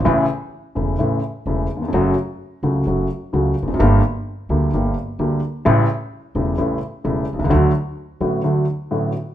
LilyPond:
<<
  \new Staff \with { instrumentName = "Upright piano" } { \clef bass \time 4/4 \key a \mixolydian \tempo 4 = 128 <a,, a, cis e a e'>8 r4 <e,, e, cis e a e'>8 <a,, a, cis e a e'>8 r8 <e,, e, cis e a e'>8 r32 ees,32 e,32 f,32 | <fis, cis fis a fis'>8 r4 <cis, cis fis a fis'>8 <fis, cis fis a fis'>8 r8 <cis, cis fis a fis'>8 r32 e,32 f,32 fis,32 | <g,, g, d g bes g'>8 r4 <d, d g bes g'>8 <g,, g, d g bes g'>8 r8 <d, d g bes g'>8 r8 | <a,, a, cis g a e'>8 r4 <e,, e, cis g a e'>8 <a,, a, cis g a e'>8 r8 <e,, e, cis g a e'>8 r32 b,,32 c,32 cis,32 |
<d, d fis a fis'>8 r4 <a,, a, d fis a fis'>8 <d, d fis a fis'>8 r8 <a,, a, d fis a fis'>8 r8 | }
  \new Staff \with { instrumentName = "Upright bass" } { \clef bass \time 4/4 \key a \mixolydian a,,16. r4 r32 e,,16. r32 a,,16. r8 r32 e,,16. r8 r32 | fis,,16. r4 r32 cis,16. r32 fis,,16. r8 r32 cis,16. r16 e,,32 f,,32 fis,,32 | g,,16. r4 r32 d,16. r32 g,,16. r8 r32 d,16. r8 r32 | a,,16. r4 r32 e,,16. r32 a,,16. r8 r32 e,,16. r16 b,,32 c,32 cis,32 |
d,16. r4 r32 a,,16. r2 r32 | }
>>